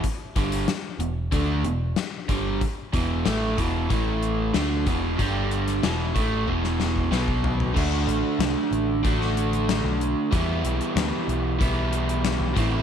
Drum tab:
CC |----------------|----------------|----------------|x---------------|
HH |x-xxx-x-x-x-x-x-|x-x-x-x-x-x-x-x-|x-xxx-x---------|--x-x-x-x-xxx-x-|
SD |----o-------o---|----o-------o---|---oo----oo-o---|----o----o--o---|
FT |----------------|----------------|--------------oo|----------------|
BD |o-o-----o-----o-|o-o---o-o-----o-|o-----o-o--o-o--|o-------o-------|

CC |----------------|
HH |x-xxx-x-x-xxx-x-|
SD |----o-------o---|
FT |----------------|
BD |o-------o-----o-|